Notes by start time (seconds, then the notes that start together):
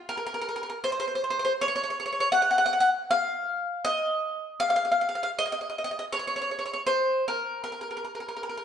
0.09 A#4
0.17 A#4
0.26 A#4
0.34 A#4
0.41 A#4
0.49 A#4
0.56 A#4
0.63 A#4
0.70 A#4
0.84 C5
0.92 C5
1.00 C5
1.07 C5
1.15 C5
1.24 C5
1.30 C5
1.39 C5
1.45 C5
1.61 C#5
1.68 C#5
1.76 C#5
1.83 C#5
1.90 C#5
2.00 C#5
2.06 C#5
2.12 C#5
2.20 C#5
2.32 F#5
2.42 F#5
2.51 F#5
2.58 F#5
2.66 F#5
2.73 F#5
2.80 F#5
3.11 F5
3.85 D#5
4.60 F5
4.70 F5
4.76 F5
4.85 F5
4.92 F5
5.01 F5
5.09 F5
5.15 F5
5.23 F5
5.39 D#5
5.46 D#5
5.52 D#5
5.61 D#5
5.70 D#5
5.78 D#5
5.84 D#5
5.91 D#5
5.99 D#5
6.13 C#5
6.19 C#5
6.27 C#5
6.36 C#5
6.42 C#5
6.51 C#5
6.59 C#5
6.66 C#5
6.73 C#5
6.87 C5
7.28 A#4
7.64 A#4
7.72 A#4
7.81 A#4
7.91 A#4
7.97 A#4
8.05 A#4
8.15 A#4
8.20 A#4
8.28 A#4
8.36 A#4
8.43 A#4
8.49 A#4
8.57 A#4